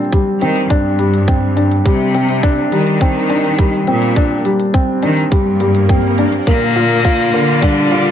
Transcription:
Already playing: felt piano G3 C4 D4
0.13 felt piano G3, kick, closed hi-hat
0.41 cello section D#3, felt piano C4, closed hi-hat
0.56 closed hi-hat
0.70 cello section G2, felt piano D4, kick, closed hi-hat
0.99 felt piano G3, closed hi-hat
1.14 closed hi-hat
1.28 felt piano C4, kick, closed hi-hat
1.57 felt piano D4, closed hi-hat
1.71 closed hi-hat
1.86 cello section C3, felt piano G3, kick, closed hi-hat
2.14 felt piano C4, closed hi-hat
2.29 closed hi-hat
2.43 felt piano D4, kick, closed hi-hat
2.72 cello section D#3, felt piano G3, closed hi-hat
2.87 closed hi-hat
3.01 felt piano C4, kick, closed hi-hat
3.30 felt piano D4, closed hi-hat
3.44 closed hi-hat
3.59 felt piano G3, kick, closed hi-hat
3.87 cello section A#2, felt piano C4, closed hi-hat
4.02 closed hi-hat
4.16 felt piano D4, kick, closed hi-hat
4.45 felt piano G3, closed hi-hat
4.60 closed hi-hat
4.74 felt piano C4, kick, closed hi-hat
5.03 cello section D#3, felt piano D4, closed hi-hat
5.17 closed hi-hat
5.32 cello section G2, felt piano G3, kick, closed hi-hat, swell
5.60 felt piano G3, closed hi-hat
5.75 closed hi-hat
5.89 felt piano C4, kick, closed hi-hat
6.18 felt piano D4, closed hi-hat
6.32 closed hi-hat
6.47 cello section A#2, string quartet D3, cello A#3, felt piano A#3, kick, closed hi-hat
6.75 string quartet A#2, felt piano F4, closed hi-hat
6.80 string quartet F4
6.90 closed hi-hat
7.05 felt piano F4, kick, closed hi-hat
7.33 cello section D3, felt piano A#3, closed hi-hat
7.41 string quartet D5
7.48 closed hi-hat
7.62 cello G3, felt piano D4, kick, closed hi-hat
7.91 felt piano F4, closed hi-hat
8.06 closed hi-hat

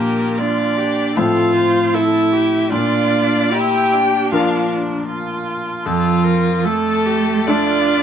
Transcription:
Already playing: grand piano A#2 F3 D4 A#4, cello A#3, viola G4, violin A#4
0.38 cello D4, viola F4, violin D5
0.77 viola G4
1.15 grand piano A2 F3 C4 C5, cello F4, viola A4, violin F5
1.55 viola C5
1.94 cello E4, viola A4, violin E5
2.32 viola G4
2.70 grand piano A#2, cello D4, viola F4, violin D5
3.52 viola E4, cello G4, violin G5
3.93 viola D4
4.32 grand piano F3 D4 A#4, cello F4, violin F5
5.08 viola F4
5.86 grand piano F2, cello F3, violin F4, viola A4
6.24 viola A#4
6.64 cello A3, viola A4, violin A4
7.05 viola G4
7.47 grand piano A3 D4 A4, cello D4, viola F4, violin D5

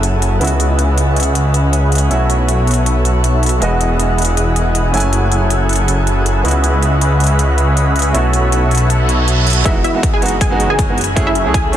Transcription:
Already playing: detuned saw bass F#1, supersaw synth F#3 E4 G#4 A4 F#5, grand piano A3 C#4 E4 G#5
0.03 closed hi-hat
0.22 closed hi-hat
0.39 detuned saw bass C#2, grand piano B3 E4 F#4, supersaw synth C#4 G#4 B4 D#5 E5 F#5, closed hi-hat
0.44 closed hi-hat
0.47 closed hi-hat
0.60 closed hi-hat
0.79 closed hi-hat
0.98 closed hi-hat
1.16 closed hi-hat
1.20 closed hi-hat
1.23 closed hi-hat
1.35 closed hi-hat
1.54 closed hi-hat
1.73 closed hi-hat
1.92 closed hi-hat
1.95 closed hi-hat
1.98 closed hi-hat
2.09 detuned saw bass B1, grand piano A3 C#4 E4, supersaw synth B3 F#4 A4 C#5 E5, closed hi-hat
2.13 grand piano F#4
2.30 closed hi-hat
2.49 closed hi-hat
2.67 closed hi-hat
2.71 closed hi-hat
2.74 closed hi-hat
2.86 closed hi-hat
3.05 closed hi-hat
3.24 closed hi-hat
3.43 closed hi-hat
3.46 closed hi-hat
3.49 closed hi-hat
3.60 detuned saw bass E1, supersaw synth E3 E4 G#4 D#5 F#5, grand piano G#3 B3 D#5, closed hi-hat
3.64 grand piano F#4
3.81 closed hi-hat
4.00 closed hi-hat
4.18 closed hi-hat
4.22 closed hi-hat
4.25 closed hi-hat
4.37 closed hi-hat
4.56 closed hi-hat
4.75 closed hi-hat
4.92 detuned saw bass F#1, supersaw synth F#3 E4 G#4 A4 F#5, grand piano A3 C#4 E4 G#5, closed hi-hat
4.97 closed hi-hat
5.00 closed hi-hat
5.13 closed hi-hat
5.32 closed hi-hat
5.50 closed hi-hat
5.69 closed hi-hat
5.73 closed hi-hat
5.76 closed hi-hat
5.88 closed hi-hat
6.07 closed hi-hat
6.26 closed hi-hat
6.43 detuned saw bass C#2, grand piano B3 E4, supersaw synth C#4 G#4 B4 D#5 E5 F#5, closed hi-hat
6.47 grand piano F#4, closed hi-hat
6.51 closed hi-hat
6.64 closed hi-hat
6.83 closed hi-hat
7.01 closed hi-hat
7.20 closed hi-hat
7.24 closed hi-hat
7.26 closed hi-hat
7.39 closed hi-hat
7.58 closed hi-hat
7.77 closed hi-hat
7.96 closed hi-hat
7.99 closed hi-hat
8.02 closed hi-hat
8.13 detuned saw bass B1, grand piano A3 C#4 E4, supersaw synth B3 F#4 A4 C#5 E5, closed hi-hat
8.17 grand piano F#4
8.33 closed hi-hat
8.52 closed hi-hat
8.71 closed hi-hat
8.75 closed hi-hat
8.77 closed hi-hat
8.90 closed hi-hat, reverse cymbal
9.09 closed hi-hat
9.28 closed hi-hat
9.47 closed hi-hat
9.50 closed hi-hat
9.53 closed hi-hat
9.64 detuned saw bass E1, supersaw synth E3 B3 F#4 G#4 D#5, grand piano G#3 B3 D#4 F#4, synth pluck E4 E5, kick, closed hi-hat
9.84 supersaw synth E3 B3 F#4 G#4 D#5, synth pluck E4 E5, closed hi-hat
9.94 grand piano G#3 B3 D#4 F#4
10.03 supersaw synth E3 B3 F#4 G#4 D#5, kick, closed hi-hat
10.14 synth pluck G#4 G#5
10.21 detuned saw bass F#1, grand piano G#3 B3 D#4 F#4, closed hi-hat
10.26 closed hi-hat
10.28 closed hi-hat
10.41 synth pluck G#4 G#5, kick, closed hi-hat
10.50 grand piano G#3 B3 D#4 F#4
10.60 supersaw synth E3 B3 F#4 G#4 C#5, closed hi-hat
10.69 grand piano G#3 B3 D#4, synth pluck G#4 G#5
10.79 kick, closed hi-hat
10.88 grand piano G#3 B3 D#4 F#4
10.98 detuned saw bass F#1, closed hi-hat
11.01 closed hi-hat
11.04 closed hi-hat
11.16 supersaw synth F#3 C#4 G#4 A4 E5, grand piano A3 C#4 E4 G#4, kick, closed hi-hat
11.27 synth pluck E4 E5
11.35 supersaw synth F#3 C#4 G#4 A4 E5, closed hi-hat
11.45 detuned saw bass C#2, grand piano A3 C#4 E4 G#4
11.54 supersaw synth F#3 C#4 G#4 A4 E5, synth pluck G#4 G#5, kick, closed hi-hat
11.72 detuned saw bass G#1, grand piano A3 C#4 E4, closed hi-hat

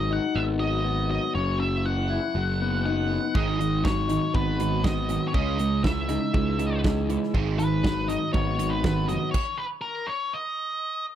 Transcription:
Already playing: picked electric bass G#1, clean electric guitar G#2 D#3 F#3, lead electric guitar D#5
0.11 clean electric guitar D#4, lead electric guitar F#5
0.35 picked electric bass G#1, clean electric guitar B3, lead electric guitar E5
0.59 clean electric guitar F#3, lead electric guitar D#5
0.84 clean electric guitar B3
1.10 clean electric guitar F#3, lead electric guitar D#5
1.35 picked electric bass F#1, clean electric guitar F#2, lead electric guitar C#5
1.59 clean electric guitar C#3, lead electric guitar E5
1.85 clean electric guitar E3, lead electric guitar F#5
2.10 clean electric guitar E4
2.35 picked electric bass F#1, clean electric guitar F#3
2.62 clean electric guitar B3
2.85 clean electric guitar D#4, lead electric guitar F#5
3.10 clean electric guitar B3
3.34 picked electric bass G#1, clean electric guitar G#2, overdriven electric guitar G#2 D#3 G#3, lead electric guitar D#5, kick
3.58 overdriven electric guitar G#2 D#3, clean electric guitar D#3, closed hi-hat
3.84 overdriven electric guitar G#2 D#3, clean electric guitar F#3, lead electric guitar C#5, kick, snare
4.09 overdriven electric guitar G#2 D#3, clean electric guitar D#4, closed hi-hat
4.34 picked electric bass G#1, overdriven electric guitar G#2 D#3, clean electric guitar B3, lead electric guitar B4, kick
4.59 overdriven electric guitar G#2 D#3, clean electric guitar F#3, closed hi-hat
4.84 overdriven electric guitar G#2 D#3, clean electric guitar B3, lead electric guitar D#5, kick, snare
5.08 overdriven electric guitar G#2 D#3, clean electric guitar F#3, closed hi-hat
5.28 lead electric guitar C#5
5.32 picked electric bass C#2, clean electric guitar C#3, overdriven electric guitar C#3 G#3 C#4, lead electric guitar D#5, kick
5.59 clean electric guitar C#3, overdriven electric guitar C#3 G#3, closed hi-hat
5.83 overdriven electric guitar C#3 G#3, clean electric guitar E3, lead electric guitar E5, kick, snare
6.08 overdriven electric guitar C#3 G#3, clean electric guitar D#4, closed hi-hat
6.34 picked electric bass C#2, overdriven electric guitar C#3 G#3, clean electric guitar G#3, kick
6.59 overdriven electric guitar C#3 G#3, clean electric guitar E3, closed hi-hat
6.84 overdriven electric guitar C#3 G#3, clean electric guitar G#3, kick, snare
7.09 overdriven electric guitar C#3 G#3, clean electric guitar E3, closed hi-hat
7.23 snare
7.34 picked electric bass G#1, clean electric guitar G#2, overdriven electric guitar G#2 D#3 G#3, kick
7.58 overdriven electric guitar G#2 D#3, clean electric guitar D#3, lead electric guitar B4, closed hi-hat
7.83 overdriven electric guitar G#2 D#3, clean electric guitar F#3, kick, snare
8.08 overdriven electric guitar G#2 D#3, clean electric guitar D#4, lead electric guitar D#5, closed hi-hat
8.33 picked electric bass G#1, overdriven electric guitar G#2 D#3, clean electric guitar B3, lead electric guitar C#5, kick
8.58 overdriven electric guitar G#2 D#3, clean electric guitar F#3, closed hi-hat
8.70 lead electric guitar B4
8.83 overdriven electric guitar G#2 D#3, clean electric guitar B3, kick, snare
9.08 overdriven electric guitar G#2 D#3, clean electric guitar F#3, lead electric guitar D#5, closed hi-hat
9.31 lead electric guitar C#5, kick, crash
9.58 lead electric guitar B4
9.81 lead electric guitar A#4
10.07 lead electric guitar C#5
10.33 lead electric guitar D#5

